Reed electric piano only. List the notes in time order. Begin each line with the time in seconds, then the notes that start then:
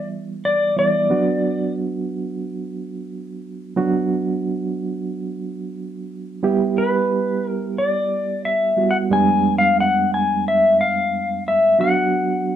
Already playing: E3 G3 B3 E4
0.76 E3 G3 B3 E4
1.10 F#3 B3 D4 F#4
3.76 F#3 B3 D4 F#4
6.43 G3 B3 E4 G4
8.77 G3 B3 E4 F#4
9.10 F2 G3 G#3 B3 D4
11.79 F#3 B3 D4 F#4